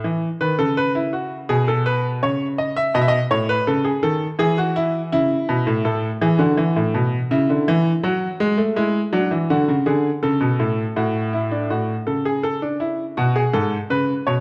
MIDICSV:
0, 0, Header, 1, 2, 480
1, 0, Start_track
1, 0, Key_signature, 3, "major"
1, 0, Tempo, 726392
1, 29, Time_signature, 4, 2, 24, 8
1, 4349, Tempo, 731707
1, 9480, End_track
2, 0, Start_track
2, 0, Title_t, "Grand piano"
2, 0, Program_c, 0, 0
2, 28, Note_on_c, 0, 52, 66
2, 177, Note_off_c, 0, 52, 0
2, 269, Note_on_c, 0, 51, 59
2, 269, Note_on_c, 0, 71, 74
2, 385, Note_off_c, 0, 71, 0
2, 386, Note_off_c, 0, 51, 0
2, 388, Note_on_c, 0, 49, 66
2, 388, Note_on_c, 0, 69, 77
2, 505, Note_off_c, 0, 69, 0
2, 511, Note_on_c, 0, 71, 77
2, 626, Note_off_c, 0, 71, 0
2, 629, Note_on_c, 0, 64, 64
2, 745, Note_off_c, 0, 64, 0
2, 746, Note_on_c, 0, 66, 64
2, 895, Note_off_c, 0, 66, 0
2, 971, Note_off_c, 0, 49, 0
2, 986, Note_on_c, 0, 47, 69
2, 986, Note_on_c, 0, 68, 82
2, 1104, Note_off_c, 0, 68, 0
2, 1110, Note_on_c, 0, 69, 73
2, 1226, Note_off_c, 0, 69, 0
2, 1228, Note_on_c, 0, 71, 71
2, 1377, Note_off_c, 0, 71, 0
2, 1453, Note_off_c, 0, 47, 0
2, 1471, Note_on_c, 0, 49, 59
2, 1472, Note_on_c, 0, 73, 69
2, 1619, Note_off_c, 0, 73, 0
2, 1707, Note_on_c, 0, 75, 70
2, 1824, Note_off_c, 0, 75, 0
2, 1827, Note_on_c, 0, 76, 81
2, 1934, Note_off_c, 0, 49, 0
2, 1943, Note_off_c, 0, 76, 0
2, 1945, Note_on_c, 0, 47, 76
2, 1948, Note_on_c, 0, 75, 86
2, 1976, Note_off_c, 0, 75, 0
2, 1992, Note_on_c, 0, 76, 68
2, 2037, Note_on_c, 0, 75, 89
2, 2038, Note_off_c, 0, 76, 0
2, 2094, Note_off_c, 0, 47, 0
2, 2129, Note_off_c, 0, 75, 0
2, 2185, Note_on_c, 0, 45, 63
2, 2186, Note_on_c, 0, 73, 80
2, 2302, Note_off_c, 0, 73, 0
2, 2307, Note_on_c, 0, 71, 82
2, 2334, Note_off_c, 0, 45, 0
2, 2422, Note_off_c, 0, 71, 0
2, 2426, Note_on_c, 0, 49, 72
2, 2427, Note_on_c, 0, 69, 75
2, 2541, Note_on_c, 0, 68, 67
2, 2542, Note_off_c, 0, 69, 0
2, 2575, Note_off_c, 0, 49, 0
2, 2659, Note_off_c, 0, 68, 0
2, 2662, Note_on_c, 0, 51, 66
2, 2662, Note_on_c, 0, 69, 79
2, 2812, Note_off_c, 0, 51, 0
2, 2812, Note_off_c, 0, 69, 0
2, 2899, Note_on_c, 0, 52, 75
2, 2903, Note_on_c, 0, 68, 94
2, 3020, Note_off_c, 0, 68, 0
2, 3026, Note_on_c, 0, 66, 84
2, 3142, Note_off_c, 0, 66, 0
2, 3145, Note_on_c, 0, 64, 82
2, 3294, Note_off_c, 0, 64, 0
2, 3368, Note_off_c, 0, 52, 0
2, 3386, Note_on_c, 0, 49, 72
2, 3386, Note_on_c, 0, 64, 84
2, 3535, Note_off_c, 0, 49, 0
2, 3626, Note_on_c, 0, 47, 71
2, 3742, Note_off_c, 0, 47, 0
2, 3745, Note_on_c, 0, 45, 75
2, 3852, Note_off_c, 0, 64, 0
2, 3853, Note_off_c, 0, 45, 0
2, 3863, Note_on_c, 0, 45, 64
2, 3865, Note_on_c, 0, 69, 68
2, 4013, Note_off_c, 0, 45, 0
2, 4015, Note_off_c, 0, 69, 0
2, 4106, Note_on_c, 0, 52, 82
2, 4108, Note_on_c, 0, 68, 62
2, 4221, Note_on_c, 0, 50, 87
2, 4221, Note_on_c, 0, 66, 65
2, 4223, Note_off_c, 0, 52, 0
2, 4224, Note_off_c, 0, 68, 0
2, 4341, Note_off_c, 0, 50, 0
2, 4344, Note_on_c, 0, 52, 79
2, 4462, Note_off_c, 0, 52, 0
2, 4468, Note_on_c, 0, 45, 74
2, 4583, Note_off_c, 0, 45, 0
2, 4587, Note_on_c, 0, 47, 67
2, 4735, Note_off_c, 0, 47, 0
2, 4805, Note_off_c, 0, 66, 0
2, 4826, Note_on_c, 0, 49, 88
2, 4827, Note_on_c, 0, 64, 67
2, 4943, Note_off_c, 0, 49, 0
2, 4950, Note_on_c, 0, 50, 72
2, 5065, Note_off_c, 0, 50, 0
2, 5070, Note_on_c, 0, 52, 91
2, 5217, Note_off_c, 0, 52, 0
2, 5292, Note_off_c, 0, 64, 0
2, 5302, Note_on_c, 0, 54, 84
2, 5303, Note_on_c, 0, 66, 73
2, 5452, Note_off_c, 0, 54, 0
2, 5543, Note_on_c, 0, 56, 87
2, 5658, Note_on_c, 0, 57, 78
2, 5660, Note_off_c, 0, 56, 0
2, 5769, Note_off_c, 0, 66, 0
2, 5777, Note_off_c, 0, 57, 0
2, 5779, Note_on_c, 0, 64, 63
2, 5781, Note_on_c, 0, 56, 84
2, 5929, Note_off_c, 0, 64, 0
2, 5931, Note_off_c, 0, 56, 0
2, 6019, Note_on_c, 0, 54, 81
2, 6021, Note_on_c, 0, 62, 61
2, 6137, Note_off_c, 0, 54, 0
2, 6140, Note_on_c, 0, 52, 72
2, 6170, Note_off_c, 0, 62, 0
2, 6258, Note_off_c, 0, 52, 0
2, 6264, Note_on_c, 0, 66, 70
2, 6265, Note_on_c, 0, 50, 85
2, 6380, Note_off_c, 0, 50, 0
2, 6384, Note_on_c, 0, 49, 76
2, 6412, Note_off_c, 0, 66, 0
2, 6499, Note_on_c, 0, 50, 82
2, 6500, Note_off_c, 0, 49, 0
2, 6502, Note_on_c, 0, 68, 65
2, 6649, Note_off_c, 0, 50, 0
2, 6651, Note_off_c, 0, 68, 0
2, 6740, Note_on_c, 0, 69, 68
2, 6742, Note_on_c, 0, 49, 77
2, 6857, Note_on_c, 0, 47, 70
2, 6858, Note_off_c, 0, 49, 0
2, 6976, Note_off_c, 0, 47, 0
2, 6982, Note_on_c, 0, 45, 70
2, 7131, Note_off_c, 0, 45, 0
2, 7207, Note_off_c, 0, 69, 0
2, 7224, Note_on_c, 0, 45, 73
2, 7225, Note_on_c, 0, 66, 65
2, 7374, Note_off_c, 0, 66, 0
2, 7465, Note_on_c, 0, 64, 61
2, 7581, Note_off_c, 0, 64, 0
2, 7585, Note_on_c, 0, 62, 61
2, 7691, Note_off_c, 0, 45, 0
2, 7702, Note_off_c, 0, 62, 0
2, 7708, Note_on_c, 0, 45, 56
2, 7709, Note_on_c, 0, 66, 67
2, 7857, Note_off_c, 0, 45, 0
2, 7858, Note_off_c, 0, 66, 0
2, 7947, Note_on_c, 0, 69, 56
2, 7949, Note_on_c, 0, 49, 51
2, 8064, Note_off_c, 0, 69, 0
2, 8070, Note_on_c, 0, 68, 68
2, 8185, Note_off_c, 0, 68, 0
2, 8188, Note_on_c, 0, 69, 68
2, 8304, Note_off_c, 0, 69, 0
2, 8311, Note_on_c, 0, 62, 63
2, 8425, Note_off_c, 0, 62, 0
2, 8429, Note_on_c, 0, 64, 62
2, 8577, Note_off_c, 0, 64, 0
2, 8646, Note_off_c, 0, 49, 0
2, 8672, Note_on_c, 0, 66, 78
2, 8674, Note_on_c, 0, 47, 74
2, 8786, Note_off_c, 0, 66, 0
2, 8793, Note_on_c, 0, 68, 75
2, 8821, Note_off_c, 0, 47, 0
2, 8907, Note_off_c, 0, 68, 0
2, 8910, Note_on_c, 0, 44, 64
2, 8910, Note_on_c, 0, 69, 75
2, 9059, Note_off_c, 0, 44, 0
2, 9059, Note_off_c, 0, 69, 0
2, 9150, Note_on_c, 0, 49, 68
2, 9152, Note_on_c, 0, 71, 78
2, 9299, Note_off_c, 0, 49, 0
2, 9301, Note_off_c, 0, 71, 0
2, 9390, Note_on_c, 0, 73, 68
2, 9391, Note_on_c, 0, 47, 61
2, 9480, Note_off_c, 0, 47, 0
2, 9480, Note_off_c, 0, 73, 0
2, 9480, End_track
0, 0, End_of_file